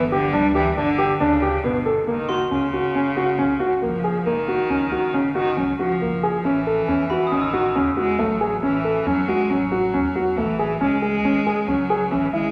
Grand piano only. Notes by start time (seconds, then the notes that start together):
0.12 G4
0.33 D4
0.55 G4
0.77 D4
0.98 G4
1.20 D4
1.42 G4
1.64 B3
1.86 A4
2.07 A#3
2.29 F#4
2.51 C#4
2.73 F#4
2.95 C#4
3.16 F#4
3.38 C#4
3.60 F#4
3.82 A#3
4.04 G#4
4.26 A#3
4.48 F#4
4.70 C#4
4.92 F#4
5.14 C#4
5.35 F#4
5.57 C#4
5.79 F#4
6.01 A#3
6.23 G#4
6.45 C#4
6.67 A4
6.88 C#4
7.10 F#4
7.31 C#4
7.53 F#4
7.75 C#4
7.97 F#4
8.19 A3
8.41 G#4
8.63 C#4
8.84 A4
9.06 C#4
9.28 F#4
9.50 C#4
9.72 F#4
9.94 C#4
10.15 F#4
10.38 A3
10.59 G#4
10.81 C#4
11.02 G#4
11.25 C#4
11.46 G#4
11.68 C#4
11.90 G#4
12.11 C#4
12.33 E4